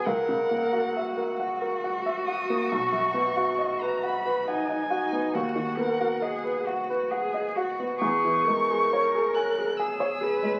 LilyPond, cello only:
\new Staff \with { instrumentName = "Cello" } { \time 3/4 \key b \major \tempo 4 = 68 ais'4 fis'2~ | fis'2 dis'8 dis'8 | fis'8 ais'8 gis'8 fis'8 gis'8 fis'8 | gis'8 ais'4. gis'8 b'8 | }